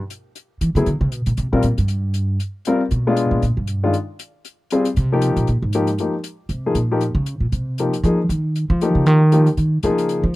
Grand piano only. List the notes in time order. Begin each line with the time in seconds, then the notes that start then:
0.77 F#3 B3 E4 G#4
1.52 G3 C4 F4 A#4
2.67 G3 C4 F4 A#4
3.07 G#3 B3 D4 F4
3.83 D#3 G#3 D4 F4
4.72 G3 C4 F4 G#4
5.12 F3 A#3 D#4 G4
5.75 F3 A#3 D#4 G4
6.00 F3 A#3 D#4 G4
6.66 F3 A#3 D#4 G#4
6.91 F3 A#3 D#4 G4
7.79 F3 A#3 D#4 G4
8.05 F3 A#3 D#4 G#4
8.82 F3 A#3 D#4 G4
9.32 F3 A#3 D#4 G4
9.84 F3 A#3 D#4 G#4